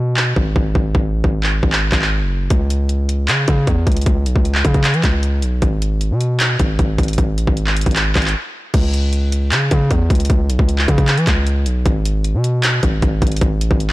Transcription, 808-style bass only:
Already playing: B2
0.36 G#1
0.56 G#1
0.75 G#1
0.95 G#1
1.14 A1
1.24 G#1
1.63 G#1
1.92 G#1
2.21 F#1
2.50 C#2
3.28 C#3
3.48 C#3
3.67 E2
3.87 C#2
4.06 C#2
4.26 B1
4.36 C#2
4.65 C#3
4.94 E3
5.04 C#2
5.43 B1
5.62 G#1
6.11 B2
6.60 G#1
6.79 G#1
6.98 G#1
7.18 G#1
7.38 A1
7.47 G#1
7.86 G#1
8.16 G#1
8.74 C#2
9.52 C#3
9.71 C#3
9.91 E2
10.10 C#2
10.30 C#2
10.49 B1
10.59 C#2
10.88 C#3
11.17 E3
11.27 C#2
11.66 B1
11.86 G#1
12.34 B2
12.83 G#1
13.02 G#1
13.22 G#1
13.41 G#1
13.61 A1
13.71 G#1

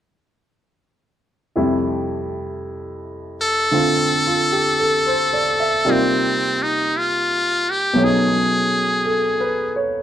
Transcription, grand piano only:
1.56 F2 C3 G3 A3 E4
3.71 D3 A3 C4 F4
4.27 F4
4.52 G4
4.80 A4
5.07 C5
5.33 D5
5.60 E5
5.85 C3 G3 A#3 D#4 F4 D5
7.93 B2 F#3
7.98 A3 C#4
8.02 D#4 G#4
9.06 A4
9.40 B4
9.76 C#5

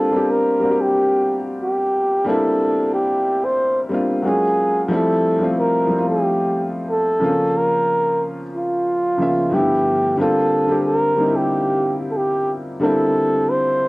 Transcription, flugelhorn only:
Already playing: A4
0.31 A#4
0.81 G4
1.62 G4
2.28 A4
2.94 G4
3.45 C5
4.27 G#4
4.93 A4
5.58 A#4
6.09 G4
6.91 A4
7.57 A#4
8.55 F4
9.54 G4
10.19 A4
10.86 A#4
11.36 G4
12.11 A4
12.17 G4
12.83 A4
13.49 C5

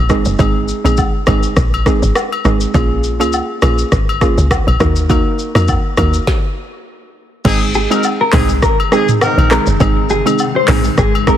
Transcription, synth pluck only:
0.09 G#3 C4 D#4 G#4
0.39 G#3 C4 D#4 G#4
0.84 G#3 C4 D#4 G#4
1.27 G#3 C4 D#4 G#4
1.86 G#3 C4 D#4 G#4
2.45 G#3 C4 D#4 G#4
2.74 A#3 C#4 F4 G#4
3.20 A#3 C#4 F4 G#4
3.62 A#3 C#4 F4 G#4
4.21 A#3 C#4 F4 G#4
4.80 A#3 D#4 F#4 A#4
5.09 A#3 D#4 F#4 A#4
5.55 A#3 D#4 F#4 A#4
5.98 A#3 D#4 F#4 A#4
7.45 G#3 C4 D#4 G#4
7.90 G#3 C4 D#4 G#4
8.33 G#3 C4 D#4 G#4
8.92 G#3 C4 D#4 G#4
9.51 G#3 C4 D#4 G#4
9.80 G#3 C4 D#4 G#4
10.26 G#3 C4 D#4 G#4
10.68 G#3 C4 D#4 G#4
11.27 G#3 C4 D#4 G#4

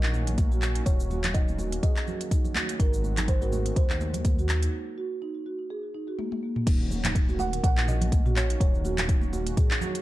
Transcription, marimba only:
0.03 D#4
0.28 A#3
0.52 F#4
0.76 D#4
1.11 F#4
1.35 D#4
1.59 F#4
1.83 G#4
2.08 F#4
2.32 D#4
2.56 F#4
2.80 D#4
3.18 D#4
3.42 F#4
3.66 A#4
3.91 D#4
4.15 A#3
4.39 F#4
4.63 D#4
4.98 F#4
5.22 D#4
5.46 F#4
5.70 G#4
5.94 D#4
6.08 F#4
6.19 A#3
6.43 A#3
6.56 A#3
6.67 D#4
7.05 D#4
7.29 F#4
7.53 A#4
7.77 D#4
8.02 A#3
8.26 F#4
8.50 D#4
8.85 F#4
9.09 D#4
9.33 F#4
9.57 G#4
9.82 F#4

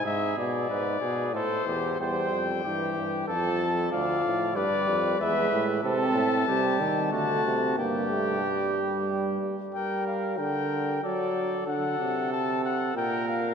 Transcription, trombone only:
1.99 G3
2.64 E3
3.28 F3
3.92 F3
4.55 G3
5.19 G#3
5.83 C4
6.48 G3
7.12 A3
7.77 A#3
8.09 A3
8.42 G3
9.74 G3
10.38 D3
11.03 F#3
11.67 D3
11.99 C3
12.95 A#2

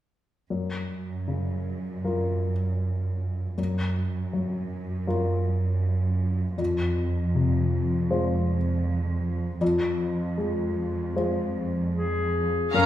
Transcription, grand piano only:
0.50 F#2
1.28 C#3
2.04 F#3 F4 A#4
3.58 F#2
4.33 F#3
5.07 F#3 F4 A#4
6.58 F2
7.35 C3
8.10 G#3 F4 C5
9.61 F2
10.38 G#3
11.16 G#3 F4 C5
12.74 F#2

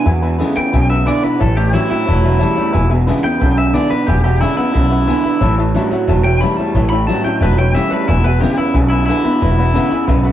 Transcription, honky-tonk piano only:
0.05 B4 E5 G#5
0.22 B4 E5 G#5
0.39 B4 E5 G#5
0.56 B4 E5 G#5
0.72 B4 E5 G#5
0.90 B4 E5 F#5
1.06 B4 E5 G#5
1.23 B4 E5 B5
1.39 C#5 E5 A5
1.56 C#5 E5 A5
1.73 C#5 E5 G5
1.89 C#5 E5 G5
2.06 C#5 E5 A5
2.23 C#5 E5 A5
2.39 C#5 E5 A5
2.56 C#5 E5 A5
2.73 B4 E5 G#5
2.90 B4 E5 G#5
3.07 B4 E5 G#5
3.23 B4 E5 B5
3.40 B4 E5 B5
3.57 B4 E5 G#5
3.75 B4 E5 G#5
3.90 B4 E5 B5
4.07 B4 E5 G#5
4.24 B4 E5 G#5
4.40 B4 E5 G#5
4.56 B4 E5 F#5
4.72 B4 E5 B5
4.90 B4 E5 F#5
5.07 B4 E5 G#5
5.23 B4 E5 B5
5.41 C#5 E5 A5
5.58 C#5 E5 A5
5.75 C#5 E5 A5
5.91 C#5 E5 F#5
6.07 C#5 E5 A5
6.25 C#5 E5 G5
6.42 C#5 E5 A5
6.59 C#5 E5 A5
6.75 C#5 E5 A5
6.92 C#5 E5 G5
7.08 C#5 E5 G5
7.25 C#5 E5 A5
7.41 C#5 E5 A5
7.58 C#5 E5 B5
7.74 C#5 E5 G5
7.92 C#5 E5 A5
8.08 B4 E5 G#5
8.25 B4 E5 G#5
8.40 B4 E5 B5
8.58 B4 E5 B5
8.74 B4 E5 G#5
8.92 B4 E5 G#5
9.09 B4 E5 G#5
9.25 B4 E5 B5
9.42 B4 E5 B5
9.59 B4 E5 F#5
9.76 B4 E5 F#5
9.92 B4 E5 G#5
10.08 B4 E5 B5
10.24 B4 E5 F#5

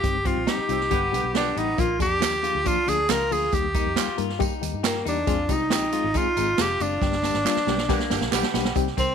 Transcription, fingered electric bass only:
0.04 G1
0.36 A#1
0.58 muted fingered electric bass stroke
0.69 C2
0.91 G1
1.13 B1
1.23 B1
1.56 A1
1.78 A#1
2.00 F2
2.22 D#2
2.55 D2
2.77 muted fingered electric bass stroke
2.88 D2
3.10 C#2
3.31 D2
3.53 D#2
3.86 F2
4.08 muted fingered electric bass stroke
4.18 G2
4.62 D#2
4.73 G2
5.06 E2
5.27 F2
5.49 C2
5.71 A#1
6.04 G#1
6.25 muted fingered electric bass stroke
6.37 G#1
6.58 F1
6.80 F#1
7.02 G1
7.35 G#1
7.56 muted fingered electric bass stroke
7.67 B1
8.11 G1
8.21 B1
8.32 B1
8.54 B1
8.76 C2
8.98 C2

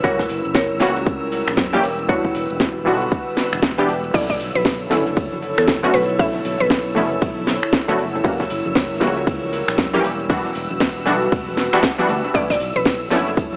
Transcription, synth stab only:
0.03 E3 G3 A#3 C#4 F#4
0.80 E3 G3 A#3 C#4 F#4
1.73 E3 G3 A#3 C#4 G4
2.09 E3 G3 B3 D4 F#4
2.85 E3 G3 B3 D4 F#4
3.78 E3 G3 B3 D4 G4
4.14 D3 A3 B3 C#4 E4
4.90 D3 A3 B3 C#4 E4
5.83 D3 A3 B3 C#4 F#4
6.19 D3 A3 B3 C#4 E4
6.95 D3 A3 B3 C#4 E4
7.88 D3 A3 B3 C#4 F#4
8.24 E3 G3 A#3 C#4 F#4
9.00 E3 G3 A#3 C#4 F#4
9.93 E3 G3 A#3 C#4 G4
10.29 E3 G3 B3 D4 F#4
11.05 E3 G3 B3 D4 F#4
11.73 E3 G3 B3 D4 F#4
11.98 E3 G3 B3 D4 F#4
12.34 D3 A3 B3 C#4 E4
13.10 D3 A3 B3 C#4 E4

